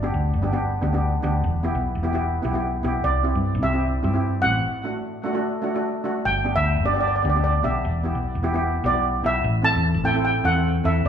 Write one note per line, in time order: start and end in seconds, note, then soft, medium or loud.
0.03 0.27 B3 medium
0.03 0.27 D4 medium
0.03 0.28 G4 loud
0.14 0.35 D2 medium
0.34 0.77 G1 medium
0.42 0.49 B3 medium
0.42 0.49 D4 medium
0.42 0.50 G4 medium
0.52 0.71 B3 medium
0.52 0.71 D4 medium
0.52 0.71 G4 medium
0.82 1.18 D2 medium
0.82 0.89 B3 medium
0.82 0.89 D4 medium
0.82 0.90 G4 medium
0.93 1.11 B3 medium
0.93 1.12 D4 medium
0.93 1.12 G4 medium
1.23 1.41 D2 medium
1.23 1.43 B3 medium
1.23 1.43 D4 medium
1.23 1.44 G4 medium
1.44 1.71 E1 loud
1.63 1.88 B3 medium
1.63 1.88 E4 medium
1.63 1.88 G4 medium
1.75 1.97 B1 medium
1.95 2.39 E1 medium
2.03 2.10 B3 medium
2.03 2.10 E4 medium
2.03 2.10 G4 medium
2.13 2.32 B3 medium
2.13 2.32 E4 medium
2.13 2.33 G4 loud
2.42 2.80 B1 medium
2.42 2.50 B3 medium
2.42 2.50 E4 medium
2.42 2.51 G4 medium
2.53 2.72 B3 medium
2.53 2.72 E4 medium
2.53 2.73 G4 medium
2.83 3.02 B1 medium
2.83 3.04 B3 medium
2.83 3.04 E4 medium
2.83 3.04 G4 loud
3.04 3.31 C2 loud
3.04 3.60 D5 medium
3.23 3.48 C4 medium
3.23 3.49 E4 medium
3.23 3.49 G4 medium
3.35 3.56 G2 medium
3.55 3.99 C2 medium
3.63 3.70 C4 medium
3.63 3.70 E4 medium
3.63 3.71 G4 medium
3.63 4.40 E5 loud
3.73 3.92 C4 medium
3.73 3.92 E4 medium
3.73 3.93 G4 medium
4.03 4.40 G2 medium
4.03 4.10 C4 medium
4.03 4.10 E4 medium
4.03 4.11 G4 medium
4.13 4.32 C4 medium
4.13 4.33 E4 medium
4.13 4.33 G4 medium
4.42 4.62 A1 medium
4.42 4.64 C4 medium
4.42 4.64 E4 medium
4.42 4.64 G4 medium
4.42 5.99 F#5 loud
4.84 5.09 A3 medium
4.84 5.09 D4 medium
4.84 5.09 F#4 medium
5.24 5.31 A3 medium
5.24 5.31 D4 medium
5.24 5.32 F#4 medium
5.33 5.52 A3 medium
5.33 5.53 D4 medium
5.33 5.53 F#4 loud
5.62 5.70 A3 medium
5.62 5.70 D4 medium
5.62 5.71 F#4 medium
5.74 5.93 A3 medium
5.74 5.93 D4 medium
5.74 5.93 F#4 medium
6.04 6.24 A3 medium
6.04 6.24 D4 medium
6.04 6.25 F#4 loud
6.25 6.52 G1 loud
6.25 6.57 G5 loud
6.44 6.69 B3 medium
6.44 6.69 D4 medium
6.44 6.70 G4 medium
6.56 6.78 D2 medium
6.56 6.86 E5 loud
6.76 7.20 G1 medium
6.84 6.91 B3 medium
6.84 6.91 D4 medium
6.84 6.92 G4 medium
6.84 6.92 D5 medium
6.94 7.13 B3 medium
6.94 7.13 D4 medium
6.94 7.14 G4 medium
6.94 6.99 D5 medium
7.00 7.06 D5 medium
7.08 7.14 D5 medium
7.16 7.21 D5 medium
7.22 7.60 D2 medium
7.22 7.31 B3 medium
7.22 7.31 D4 medium
7.22 7.31 G4 medium
7.22 7.28 D5 medium
7.29 7.38 D5 medium
7.34 7.53 B3 medium
7.34 7.53 D4 medium
7.34 7.54 G4 medium
7.44 7.63 D5 medium
7.63 7.82 B1 medium
7.63 7.84 B3 medium
7.63 7.84 D4 medium
7.63 7.84 G4 medium
7.63 8.40 E5 medium
7.85 8.12 E1 loud
8.04 8.28 B3 medium
8.04 8.29 E4 medium
8.04 8.29 G4 medium
8.15 8.37 B1 medium
8.35 8.79 E1 medium
8.43 8.50 B3 medium
8.43 8.50 E4 medium
8.43 8.51 G4 loud
8.54 8.72 B3 medium
8.54 8.73 E4 medium
8.54 8.73 G4 loud
8.83 9.20 B1 medium
8.83 8.91 B3 medium
8.83 8.91 E4 medium
8.83 8.91 G4 medium
8.83 9.27 D5 medium
8.93 9.12 B3 medium
8.93 9.12 E4 medium
8.93 9.13 G4 medium
9.23 9.42 B1 medium
9.23 9.44 B3 medium
9.23 9.44 E4 medium
9.23 9.45 G4 medium
9.23 9.67 E5 loud
9.44 9.72 A1 loud
9.62 9.88 C4 medium
9.62 9.88 E4 medium
9.62 9.89 A4 medium
9.62 10.06 A5 loud
9.75 9.96 E2 medium
9.94 10.39 A1 loud
10.04 10.11 C4 medium
10.04 10.11 E4 medium
10.04 10.11 A4 medium
10.04 10.24 G5 loud
10.14 10.33 C4 medium
10.14 10.33 E4 medium
10.14 10.34 A4 medium
10.25 10.45 G5 medium
10.44 10.80 E2 medium
10.44 10.51 C4 medium
10.44 10.51 E4 medium
10.44 10.51 A4 medium
10.44 10.86 F#5 loud
10.54 10.73 C4 medium
10.54 10.73 E4 medium
10.54 10.73 A4 medium
10.84 11.03 E2 medium
10.84 11.04 C4 medium
10.84 11.05 E4 medium
10.84 11.05 A4 medium
10.84 11.06 E5 medium
11.05 11.09 D2 loud